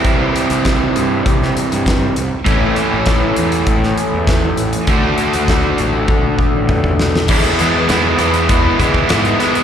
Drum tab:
CC |----------------|----------------|----------------|x---------------|
HH |x-xxx-x-x-xxx-x-|x-x-x-xxx-x-x-xx|x-xxx-x---------|-xx-x-xxx-x-xxxx|
SD |----o----o--o---|----o----o--o---|----o---------oo|----o-------o-o-|
T1 |----------------|----------------|--------o-------|----------------|
T2 |----------------|----------------|------------o---|----------------|
BD |o---o---o---o---|o---o---o---o---|o---o---o-o-oo--|o-------o-oo----|